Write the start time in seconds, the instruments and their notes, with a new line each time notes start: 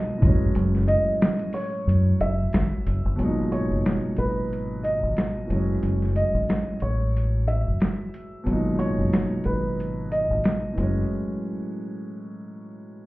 Already playing: grand piano A#2 B2 F#3 G#3 D#4, upright piano D#5
0.18 grand piano A2 E3, kick
0.22 fingered electric bass F#1, grand piano F#3 G#3, closed hi-hat
0.27 grand piano C#4
0.55 fingered electric bass F#1, closed hi-hat
0.75 snare
0.88 upright piano D#5, closed hi-hat
1.22 snare, closed hi-hat
1.39 closed hi-hat
1.53 upright piano C#5, open hi-hat
1.87 fingered electric bass F#2, closed hi-hat
2.20 fingered electric bass F#1, upright piano E5, closed hi-hat
2.53 fingered electric bass G#1, snare, closed hi-hat
2.86 fingered electric bass F#1, closed hi-hat
3.05 fingered electric bass G1
3.16 fingered electric bass G#1, grand piano B2 F#3, closed hi-hat
3.20 grand piano A#2 G#3
3.24 grand piano D#4
3.52 upright piano C#5, closed hi-hat
3.71 fingered electric bass F#1
3.86 snare, closed hi-hat
4.17 fingered electric bass G#1, upright piano B4, closed hi-hat
4.53 closed hi-hat
4.83 upright piano D#5, closed hi-hat
5.03 fingered electric bass G#1
5.17 snare, closed hi-hat
5.46 grand piano A2 E3
5.50 fingered electric bass F#1, grand piano F#3 G#3, closed hi-hat
5.54 grand piano C#4
5.83 fingered electric bass F#1, closed hi-hat
6.02 snare
6.16 upright piano D#5, closed hi-hat
6.34 fingered electric bass G#1
6.49 snare, closed hi-hat
6.80 fingered electric bass A1, upright piano C#5, closed hi-hat
7.17 closed hi-hat
7.47 upright piano E5, closed hi-hat
7.67 fingered electric bass F#1
7.80 snare, closed hi-hat
8.14 closed hi-hat
8.44 fingered electric bass G#1, grand piano B2 F#3, closed hi-hat
8.48 grand piano A#2 G#3
8.52 grand piano D#4
8.79 upright piano C#5, closed hi-hat
8.98 fingered electric bass F#1
9.13 snare, closed hi-hat
9.44 fingered electric bass G#1, upright piano B4, closed hi-hat
9.80 closed hi-hat
10.11 upright piano D#5, closed hi-hat
10.30 fingered electric bass G#1
10.44 snare, closed hi-hat
10.73 grand piano A2 E3
10.78 fingered electric bass F#1, grand piano F#3 G#3, closed hi-hat
10.82 grand piano C#4